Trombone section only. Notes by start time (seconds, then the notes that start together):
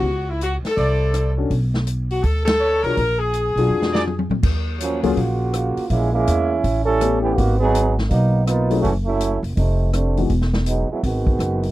4.80 F3 F#3 A#3 C#4
5.02 F#3 A#3 C#4 F4
5.15 C#3 A#3 F4 F#4
5.89 G#3 A#3 C#4 E4
6.11 G#3 A#3 C#4 E4
6.84 G3 C#4 E4 A4
7.21 E3 B3 C#4 G4
7.34 D#3 A#3 B3 F#4
7.58 F#3 B3 D#4 G#4
8.08 F#3 A#3 B3 D#4
8.46 A#3 B3 D#4 F4
8.81 E3 A3 C#4 F#4
9.05 F#3 A3 C#4 E4
9.56 G3 A3 C4 D#4
9.93 G3 A3 C4 D4
10.66 F#3 G#3 B3 D#4
10.91 F#3 G#3 B3 E4
11.03 D#3 G#3 B3 F#4